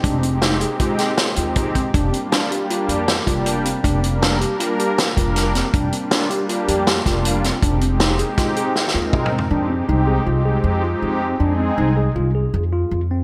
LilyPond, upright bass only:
\new Staff \with { instrumentName = "Upright bass" } { \clef bass \time 5/4 \key f \dorian \tempo 4 = 159 f,,2 r4. ees,4. | f,,8 r2 f,4 f,,4. | f,,2 r4. f,,4. | f,,8 r2 f,4 f,,4. |
f,,2 r4. ees,4. | f,4 c,4 c,4 f,4 f,4 | f,4 c,4 c,4 f,4 f,4 | }